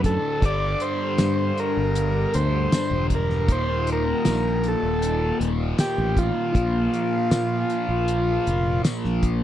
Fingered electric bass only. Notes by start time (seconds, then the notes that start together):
Already playing: F#2
0.42 G1
1.19 G2
1.77 G1
2.35 D2
2.91 E1
3.48 D#1
4.27 A#1
4.83 D#1
5.40 D#1
5.98 A1
6.55 A#1
7.31 A#2
7.89 A#1
8.47 F1
9.05 A#1